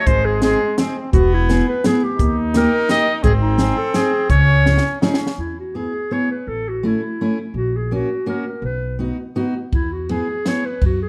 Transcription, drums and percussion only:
0.07 kick medium
0.07 closed hi-hat soft
0.42 snare medium
0.42 closed hi-hat soft
0.78 snare medium
0.78 closed hi-hat medium
1.13 kick medium
1.13 closed hi-hat soft
1.50 snare medium
1.50 closed hi-hat soft
1.84 snare medium
1.84 closed hi-hat medium
2.19 kick medium
2.19 closed hi-hat soft
2.54 snare medium
2.54 closed hi-hat soft
2.89 snare medium
2.89 closed hi-hat medium
3.24 kick medium
3.24 closed hi-hat soft
3.59 snare medium
3.59 closed hi-hat soft
3.94 snare medium
3.94 closed hi-hat soft
4.30 kick medium
4.30 closed hi-hat soft
4.66 snare medium
4.78 snare medium
5.02 snare medium
5.14 snare medium
5.27 snare medium
9.73 kick medium
9.73 ride soft
10.09 ride soft
10.46 snare medium
10.46 ride soft
10.81 kick medium
10.81 ride soft

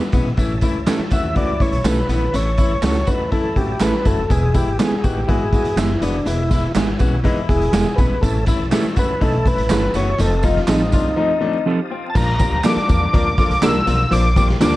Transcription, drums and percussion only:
0.12 kick medium
0.12 closed hi-hat medium
0.12 tambourine soft
0.37 kick loud
0.37 closed hi-hat medium
0.37 tambourine medium
0.61 kick medium
0.61 closed hi-hat medium
0.61 tambourine medium
0.86 snare loud
0.86 clap medium
0.86 closed hi-hat medium
0.86 tambourine medium
1.11 kick medium
1.11 closed hi-hat medium
1.11 tambourine medium
1.36 kick medium
1.36 closed hi-hat medium
1.60 kick medium
1.60 closed hi-hat medium
1.60 tambourine soft
1.72 closed hi-hat medium
1.85 snare loud
1.85 clap loud
1.85 closed hi-hat medium
1.85 tambourine loud
2.09 closed hi-hat medium
2.09 tambourine soft
2.34 closed hi-hat medium
2.34 tambourine medium
2.58 kick medium
2.58 closed hi-hat medium
2.58 tambourine medium
2.83 snare loud
2.83 clap medium
2.83 closed hi-hat medium
2.83 tambourine medium
2.95 closed hi-hat medium
3.07 kick medium
3.07 closed hi-hat medium
3.07 tambourine medium
3.32 kick medium
3.32 closed hi-hat medium
3.56 kick medium
3.56 closed hi-hat medium
3.80 snare loud
3.80 clap loud
3.80 closed hi-hat medium
3.80 tambourine loud
4.05 kick medium
4.05 closed hi-hat medium
4.05 tambourine soft
4.30 kick loud
4.30 closed hi-hat medium
4.30 tambourine medium
4.54 kick medium
4.54 closed hi-hat medium
4.54 tambourine medium
4.79 snare loud
4.79 clap medium
4.79 closed hi-hat medium
4.79 tambourine medium
5.04 kick medium
5.04 closed hi-hat medium
5.04 tambourine medium
5.29 kick medium
5.29 closed hi-hat medium
5.53 kick medium
5.53 closed hi-hat medium
5.53 tambourine soft
5.65 closed hi-hat medium
5.77 snare loud
5.77 clap loud
5.77 closed hi-hat medium
5.77 tambourine loud
6.02 closed hi-hat medium
6.02 tambourine soft
6.26 closed hi-hat medium
6.26 tambourine medium
6.51 kick medium
6.51 snare soft
6.51 closed hi-hat medium
6.51 tambourine medium
6.75 snare loud
6.75 clap medium
6.75 closed hi-hat medium
6.75 tambourine medium
6.99 kick medium
6.99 closed hi-hat medium
6.99 tambourine medium
7.25 kick medium
7.25 closed hi-hat medium
7.49 kick medium
7.49 closed hi-hat medium
7.49 tambourine soft
7.61 closed hi-hat medium
7.73 snare loud
7.73 clap loud
7.73 closed hi-hat medium
7.73 tambourine loud
7.98 kick medium
7.98 closed hi-hat medium
7.98 tambourine soft
8.23 kick loud
8.23 closed hi-hat medium
8.23 tambourine medium
8.46 kick medium
8.46 snare soft
8.46 closed hi-hat medium
8.46 tambourine medium
8.72 snare loud
8.72 clap medium
8.72 closed hi-hat medium
8.72 tambourine medium
8.96 kick medium
8.96 closed hi-hat medium
8.96 tambourine medium
9.21 kick medium
9.21 closed hi-hat medium
9.21 tambourine soft
9.46 kick medium
9.46 closed hi-hat medium
9.46 tambourine soft
9.58 closed hi-hat medium
9.70 snare loud
9.70 clap loud
9.70 closed hi-hat medium
9.70 tambourine loud
9.94 closed hi-hat medium
9.94 tambourine soft
10.19 closed hi-hat medium
10.19 tambourine medium
10.43 kick medium
10.43 snare soft
10.43 closed hi-hat medium
10.43 tambourine medium
10.57 snare soft
10.68 snare loud
10.68 clap medium
10.68 closed hi-hat medium
10.68 tambourine medium
10.92 kick medium
10.92 closed hi-hat medium
10.92 tambourine medium
12.15 kick loud
12.15 crash loud
12.15 tambourine medium
12.39 kick loud
12.39 closed hi-hat medium
12.39 tambourine medium
12.64 snare loud
12.64 clap medium
12.64 closed hi-hat loud
12.64 tambourine medium
12.77 closed hi-hat medium
12.89 kick medium
12.89 closed hi-hat medium
12.89 tambourine medium
13.14 kick loud
13.14 closed hi-hat medium
13.14 tambourine soft
13.38 kick medium
13.38 closed hi-hat medium
13.38 tambourine soft
13.51 closed hi-hat medium
13.63 snare loud
13.63 clap loud
13.63 closed hi-hat medium
13.63 tambourine loud
13.87 closed hi-hat medium
13.87 tambourine soft
14.12 closed hi-hat medium
14.12 tambourine medium
14.36 kick medium
14.36 closed hi-hat medium
14.36 tambourine medium
14.49 snare soft
14.61 snare loud
14.61 clap medium
14.61 closed hi-hat loud
14.61 tambourine loud
14.73 closed hi-hat medium

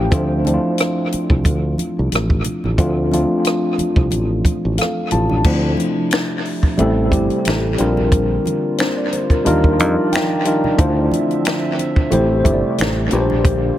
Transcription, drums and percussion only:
0.11 kick loud
0.11 closed hi-hat medium
0.11 muted conga soft
0.45 closed hi-hat medium
0.45 muted conga soft
0.45 high conga medium
0.78 cross-stick loud
0.78 closed hi-hat medium
1.12 closed hi-hat medium
1.30 kick medium
1.44 kick medium
1.44 closed hi-hat medium
1.44 muted conga soft
1.44 high conga medium
1.44 low conga medium
1.78 closed hi-hat medium
1.78 muted conga soft
1.78 high conga medium
2.12 cross-stick loud
2.12 closed hi-hat medium
2.12 high conga soft
2.30 kick medium
2.44 closed hi-hat medium
2.44 low conga medium
2.64 low conga medium
2.78 kick loud
2.78 closed hi-hat medium
3.11 closed hi-hat medium
3.11 high conga medium
3.45 cross-stick medium
3.45 closed hi-hat medium
3.45 muted conga soft
3.78 closed hi-hat medium
3.78 muted conga soft
3.78 high conga soft
3.96 kick medium
4.11 closed hi-hat medium
4.11 high conga medium
4.11 low conga medium
4.44 kick medium
4.44 closed hi-hat medium
4.44 muted conga soft
4.44 high conga medium
4.78 cross-stick loud
4.78 closed hi-hat medium
4.78 muted conga soft
4.78 high conga soft
5.11 closed hi-hat medium
5.11 low conga medium
5.29 low conga medium
5.44 kick loud
5.44 crash medium
5.44 muted conga soft
5.77 closed hi-hat soft
5.77 high conga medium
6.11 finger snap medium
6.11 snare loud
6.11 closed hi-hat medium
6.45 open hi-hat soft
6.63 kick medium
6.78 closed hi-hat medium
6.78 muted conga soft
6.78 high conga medium
6.78 low conga medium
7.11 kick medium
7.11 closed hi-hat medium
7.11 high conga medium
7.30 closed hi-hat soft
7.45 finger snap medium
7.45 snare medium
7.45 closed hi-hat medium
7.45 muted conga soft
7.45 high conga medium
7.78 closed hi-hat medium
7.78 muted conga soft
7.97 low conga medium
8.12 kick loud
8.12 closed hi-hat medium
8.12 muted conga soft
8.46 closed hi-hat medium
8.46 muted conga soft
8.46 high conga medium
8.78 finger snap medium
8.78 snare loud
8.78 closed hi-hat medium
8.78 muted conga soft
9.13 closed hi-hat medium
9.13 muted conga soft
9.30 kick medium
9.30 closed hi-hat soft
9.46 closed hi-hat medium
9.46 muted conga soft
9.46 high conga medium
9.46 low conga medium
9.64 kick medium
9.79 closed hi-hat medium
9.79 high conga medium
10.12 finger snap medium
10.12 snare loud
10.12 closed hi-hat medium
10.12 high conga medium
10.45 closed hi-hat medium
10.45 muted conga soft
10.64 low conga medium
10.79 kick loud
10.79 closed hi-hat medium
11.12 closed hi-hat medium
11.12 muted conga soft
11.12 high conga medium
11.31 closed hi-hat soft
11.45 finger snap medium
11.45 snare loud
11.45 closed hi-hat medium
11.45 muted conga soft
11.79 closed hi-hat medium
11.79 muted conga soft
11.96 kick medium
12.12 closed hi-hat medium
12.12 muted conga soft
12.12 high conga medium
12.12 low conga medium
12.45 kick medium
12.45 closed hi-hat medium
12.45 muted conga soft
12.45 high conga medium
12.78 finger snap medium
12.78 snare loud
12.78 closed hi-hat medium
12.78 high conga medium
13.11 closed hi-hat medium
13.11 muted conga soft
13.30 low conga medium
13.45 kick loud
13.45 closed hi-hat medium

